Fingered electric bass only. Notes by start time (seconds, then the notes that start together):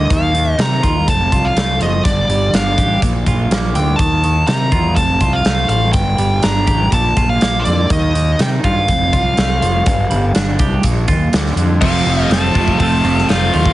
0.10 D#2
0.58 C3
0.84 D#2
1.08 F1
1.32 C2
1.56 C2
1.80 F#1
2.05 G1
2.29 G1
2.53 G1
2.78 A1
3.02 A#1
3.27 A#1
3.50 A#1
3.74 D2
4.00 D#2
4.47 C3
4.72 E2
4.96 F1
5.21 C2
5.45 C2
5.68 A1
5.94 G1
6.18 G1
6.44 G1
6.68 A1
6.92 A#1
7.16 A#1
7.42 A#1
7.66 F2
7.90 D#2
8.39 C3
8.64 G2
8.88 F1
9.13 C2
9.37 C2
9.61 F1
9.87 G1
10.11 G1
10.35 G1
10.59 C2
10.84 A#1
11.08 D#2
11.33 D2
11.56 F2
11.82 F1
12.06 F1
12.29 F1
12.55 F1
12.80 F1
13.04 F1
13.29 F1
13.54 D#2